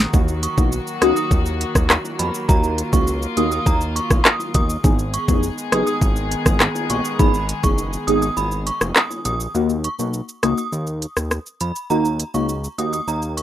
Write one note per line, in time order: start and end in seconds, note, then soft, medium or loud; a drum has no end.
0.00 4.80 D#3 medium
0.13 0.47 D#2 loud
0.13 4.80 F#3 medium
0.13 4.80 A#3 medium
0.13 0.30 A#3 loud
0.13 0.30 D#4 medium
0.13 2.46 F#4 medium
0.13 0.30 F#4 loud
0.13 kick loud
0.13 high bongo medium
0.13 shaker medium
0.28 shaker medium
0.43 0.54 C#6 medium
0.43 closed hi-hat medium
0.43 shaker medium
0.58 0.80 B1 medium
0.58 0.74 A#3 medium
0.58 0.74 D#4 medium
0.58 0.75 F#4 medium
0.58 kick medium
0.58 high bongo medium
0.58 shaker medium
0.72 shaker medium
0.87 shaker medium
1.02 1.13 C#2 loud
1.02 1.18 A#3 medium
1.02 1.19 D#4 medium
1.02 1.19 F#4 medium
1.02 1.13 D#6 medium
1.02 cross-stick loud
1.02 closed hi-hat medium
1.02 low bongo medium
1.02 shaker soft
1.16 1.28 D#6 medium
1.16 shaker medium
1.31 1.65 D#2 loud
1.31 kick loud
1.31 high bongo medium
1.31 shaker medium
1.46 shaker medium
1.61 closed hi-hat medium
1.61 shaker soft
1.75 1.98 D#2 loud
1.75 kick loud
1.75 cross-stick medium
1.75 high bongo medium
1.75 shaker medium
1.90 cross-stick loud
1.90 clap loud
1.90 shaker medium
2.04 high bongo medium
2.04 shaker medium
2.19 2.31 F2 medium
2.19 2.30 B5 medium
2.19 closed hi-hat medium
2.19 low bongo medium
2.19 shaker medium
2.34 shaker medium
2.48 2.83 D#2 loud
2.48 2.65 A#3 medium
2.48 2.66 D#4 medium
2.48 4.82 F4 medium
2.48 2.66 F#4 loud
2.48 2.71 A#5 loud
2.48 kick loud
2.48 high bongo medium
2.48 shaker medium
2.64 shaker medium
2.78 closed hi-hat medium
2.78 shaker medium
2.93 3.27 C#2 medium
2.93 3.09 A#3 medium
2.93 3.10 D#4 medium
2.93 3.10 F#4 medium
2.93 3.04 C#6 medium
2.93 kick medium
2.93 high bongo medium
2.93 shaker medium
3.07 shaker medium
3.22 shaker medium
3.37 3.60 D#2 medium
3.37 3.54 A#3 medium
3.37 3.54 D#4 medium
3.37 3.54 F#4 medium
3.37 3.48 D#6 medium
3.37 closed hi-hat medium
3.37 low bongo medium
3.37 shaker soft
3.52 3.63 D#6 medium
3.52 shaker medium
3.66 4.00 D#2 medium
3.66 3.78 A#5 medium
3.66 kick medium
3.66 high bongo medium
3.66 shaker medium
3.81 shaker medium
3.96 4.07 C#6 medium
3.96 closed hi-hat medium
3.96 shaker medium
4.10 4.22 B1 medium
4.10 kick loud
4.10 cross-stick medium
4.10 high bongo medium
4.10 shaker medium
4.25 4.37 D#6 medium
4.25 cross-stick loud
4.25 clap loud
4.25 shaker medium
4.40 high bongo medium
4.40 shaker medium
4.54 4.77 D#2 loud
4.54 4.66 D#6 medium
4.54 kick loud
4.54 closed hi-hat medium
4.54 low bongo medium
4.54 shaker medium
4.70 shaker medium
4.84 5.18 G#1 loud
4.84 9.51 D#3 medium
4.84 9.51 G#3 medium
4.84 5.01 B3 loud
4.84 9.51 B3 medium
4.84 5.01 D#4 medium
4.84 9.51 G#4 loud
4.84 5.01 G#4 loud
4.84 kick loud
4.84 high bongo medium
4.84 shaker medium
4.99 shaker medium
5.14 5.25 C#6 medium
5.14 closed hi-hat medium
5.14 shaker medium
5.28 5.51 F1 medium
5.28 5.45 B3 medium
5.28 5.45 D#4 medium
5.28 5.45 G#4 medium
5.28 kick medium
5.28 high bongo medium
5.28 shaker medium
5.43 shaker medium
5.58 shaker medium
5.72 5.84 F#1 loud
5.72 5.89 B3 medium
5.72 5.89 D#4 medium
5.72 5.89 G#4 medium
5.72 5.84 D#6 medium
5.72 cross-stick loud
5.72 closed hi-hat medium
5.72 low bongo medium
5.72 shaker soft
5.87 5.98 D#6 medium
5.87 shaker medium
6.01 6.35 G#1 loud
6.01 kick medium
6.01 high bongo medium
6.01 shaker medium
6.16 shaker medium
6.32 closed hi-hat medium
6.32 shaker medium
6.46 6.68 G#1 medium
6.46 kick medium
6.46 cross-stick medium
6.46 high bongo medium
6.46 shaker medium
6.60 cross-stick loud
6.60 clap loud
6.60 shaker medium
6.75 high bongo medium
6.75 shaker medium
6.90 7.01 A#1 medium
6.90 7.01 C#6 medium
6.90 closed hi-hat medium
6.90 low bongo medium
6.90 shaker medium
7.05 shaker medium
7.19 7.53 G#1 loud
7.19 7.36 B3 loud
7.19 7.36 D#4 medium
7.19 7.36 G#4 loud
7.19 7.42 B5 loud
7.19 kick loud
7.19 high bongo medium
7.19 shaker medium
7.34 shaker medium
7.49 closed hi-hat medium
7.49 shaker medium
7.63 7.97 F#1 medium
7.63 7.80 B3 medium
7.63 7.80 D#4 medium
7.63 7.80 G#4 medium
7.63 7.75 C#6 medium
7.63 kick medium
7.63 high bongo medium
7.63 shaker medium
7.78 shaker medium
7.93 shaker medium
8.07 8.30 G#1 medium
8.07 8.24 B3 medium
8.07 8.24 D#4 medium
8.07 8.25 G#4 medium
8.07 8.19 D#6 medium
8.07 closed hi-hat medium
8.07 low bongo medium
8.07 shaker soft
8.22 8.33 D#6 medium
8.22 shaker medium
8.37 8.71 G#1 medium
8.37 8.48 B5 medium
8.37 high bongo medium
8.37 shaker medium
8.51 shaker medium
8.67 8.78 C#6 medium
8.67 closed hi-hat medium
8.67 shaker medium
8.81 8.92 F1 loud
8.81 cross-stick medium
8.81 high bongo medium
8.81 shaker medium
8.96 9.07 D#6 medium
8.96 cross-stick loud
8.96 clap medium
8.96 shaker medium
9.11 high bongo medium
9.11 shaker soft
9.25 9.48 A#1 medium
9.25 9.37 D#6 medium
9.25 closed hi-hat medium
9.25 low bongo medium
9.25 shaker medium
9.40 shaker medium
9.54 9.88 D#2 loud
9.54 9.71 A#3 medium
9.54 9.72 D#4 medium
9.54 9.72 F#4 loud
9.54 shaker medium
9.70 shaker medium
9.84 9.96 C#6 medium
9.84 closed hi-hat medium
9.84 shaker medium
9.99 10.21 B1 medium
9.99 10.15 A#3 medium
9.99 10.16 D#4 medium
9.99 10.16 F#4 medium
9.99 shaker medium
10.14 shaker medium
10.29 shaker medium
10.43 10.54 C#2 medium
10.43 10.60 A#3 medium
10.43 10.60 D#4 medium
10.43 10.60 F#4 medium
10.43 10.54 D#6 medium
10.43 cross-stick loud
10.43 closed hi-hat medium
10.43 shaker soft
10.58 10.69 D#6 medium
10.58 shaker medium
10.72 11.06 D#2 medium
10.72 shaker medium
10.87 shaker soft
11.02 closed hi-hat medium
11.02 shaker soft
11.17 11.39 D#2 loud
11.17 cross-stick medium
11.17 shaker medium
11.31 cross-stick loud
11.31 shaker medium
11.46 shaker medium
11.61 11.72 F2 medium
11.61 11.72 B5 medium
11.61 closed hi-hat medium
11.61 shaker medium
11.76 shaker medium
11.90 12.24 D#2 loud
11.90 12.07 A#3 medium
11.90 12.07 D#4 medium
11.90 12.07 F#4 loud
11.90 12.13 A#5 loud
11.90 shaker medium
12.05 shaker medium
12.20 closed hi-hat medium
12.20 shaker medium
12.34 12.68 C#2 medium
12.34 12.51 A#3 medium
12.34 12.51 D#4 medium
12.34 12.51 F#4 medium
12.34 12.46 C#6 medium
12.34 shaker medium
12.49 shaker medium
12.64 shaker medium
12.78 13.01 D#2 medium
12.78 12.95 A#3 medium
12.78 12.95 D#4 medium
12.78 12.95 F#4 medium
12.78 12.90 D#6 medium
12.78 closed hi-hat medium
12.78 shaker soft
12.93 13.04 D#6 medium
12.93 shaker medium
13.08 13.41 D#2 loud
13.08 13.19 A#5 medium
13.08 shaker medium
13.22 shaker medium
13.37 13.43 C#6 medium
13.37 closed hi-hat medium
13.37 shaker medium